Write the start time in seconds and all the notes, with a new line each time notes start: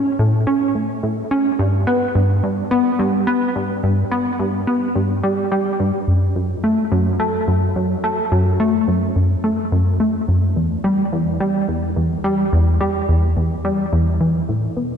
Already playing: C#4
0.19 A2
0.47 C#4
0.75 A2
1.03 A2
1.31 C#4
1.59 G2
1.87 B3
2.15 G2
2.43 G2
2.71 B3
2.99 G2
3.27 B3
3.55 G2
3.83 G2
4.11 B3
4.39 G2
4.67 B3
4.95 G2
5.23 G3
5.52 G3
5.80 G2
6.07 F#2
6.36 F#2
6.64 A3
6.92 F#2
7.20 A3
7.48 F#2
7.76 F#2
8.04 A3
8.32 F#2
8.60 A3
8.88 F#2
9.16 F#2
9.44 A3
9.72 F#2
10.00 A3
10.28 F#2
10.56 E2
10.84 G3
11.12 E2
11.40 G3
11.68 E2
11.96 E2
12.24 G3
12.53 E2
12.81 G3
13.09 E2
13.36 E2
13.65 G3
13.92 E2
14.20 E3
14.49 A2
14.77 B2